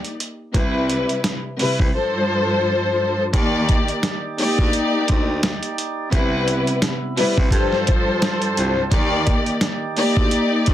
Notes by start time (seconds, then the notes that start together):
Already playing: A#3 D#4 G4 D5
0.05 closed hi-hat
0.20 closed hi-hat
0.54 C2 C3 G3 E4 B4, kick, closed hi-hat
0.90 closed hi-hat
1.09 closed hi-hat
1.24 snare, closed hi-hat
1.58 C3 G3 E4 B4, open hi-hat
1.80 C2, kick
1.93 G2 F3 A4 C5
3.33 D#2 D#3 A#3 D#4 G4 D5, kick, closed hi-hat
3.69 kick, closed hi-hat
3.88 closed hi-hat
4.03 snare, closed hi-hat
4.38 A#3 D#4 G4 D5, open hi-hat
4.59 D2, kick
4.73 closed hi-hat
5.08 D2, kick, closed hi-hat
5.43 snare, closed hi-hat
5.63 closed hi-hat
5.78 closed hi-hat
6.10 C2 C3 G3 B3 E4 B4, kick, closed hi-hat
6.48 closed hi-hat
6.67 closed hi-hat
6.82 snare, closed hi-hat
7.16 C3 G3 E4 B4, open hi-hat
7.38 C2, kick
7.51 G2 F3 G3 F4 A4 C5, kick, closed hi-hat
7.73 snare
7.87 kick, closed hi-hat
8.22 snare, closed hi-hat
8.42 closed hi-hat
8.57 C2, closed hi-hat
8.91 D#2 D#3 A#3 D#4 G4 D5, kick, closed hi-hat
9.27 kick, closed hi-hat
9.46 closed hi-hat
9.61 snare, closed hi-hat
9.97 A#3 D#4 G4 D5, open hi-hat
10.17 D2, kick
10.31 closed hi-hat
10.66 D2, kick, closed hi-hat